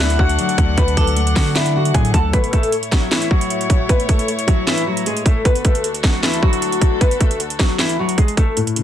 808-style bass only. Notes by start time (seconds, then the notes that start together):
Already playing: D2
0.19 D2
0.58 D2
0.78 D2
0.97 D2
1.36 D3
1.94 A2
2.14 D2